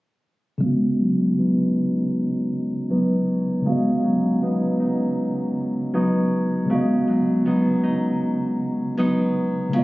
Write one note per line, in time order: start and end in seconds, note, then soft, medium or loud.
0.58 3.60 C#3 medium
0.58 3.61 G#3 medium
0.62 3.65 C#3 medium
0.62 3.62 B3 medium
0.62 3.64 F#4 medium
0.68 3.65 D#5 medium
1.00 1.38 F#3 medium
1.38 2.89 F#3 medium
1.38 2.90 B3 medium
1.38 1.75 D#4 medium
1.76 2.91 D#4 medium
2.90 4.03 F#3 medium
2.90 4.42 B3 medium
2.90 4.42 D#4 medium
3.62 6.64 C#3 medium
3.62 6.65 G#3 medium
3.66 6.69 C#3 medium
3.66 6.66 B3 medium
3.66 6.67 F#4 medium
3.72 6.69 D#5 medium
4.04 4.41 F#3 medium
4.42 5.93 F#3 medium
4.42 5.94 B3 medium
4.42 4.79 D#4 medium
4.80 5.94 D#4 medium
5.94 7.07 F#3 medium
5.94 7.46 B3 medium
5.94 7.46 D#4 medium
6.65 9.67 C#3 medium
6.65 9.68 G#3 medium
6.70 9.72 C#3 medium
6.70 9.70 B3 medium
6.70 9.71 F#4 medium
6.75 9.72 D#5 medium
7.08 7.45 F#3 medium
7.46 8.97 F#3 medium
7.46 8.98 B3 medium
7.46 7.83 D#4 medium
7.84 8.98 D#4 medium
8.97 9.84 F#3 medium
8.97 9.84 B3 medium
8.97 9.84 D#4 medium
9.69 9.84 C#3 medium
9.69 9.84 G#3 medium
9.73 9.84 C#3 medium
9.73 9.84 B3 medium
9.73 9.81 F4 medium
9.79 9.84 D#5 medium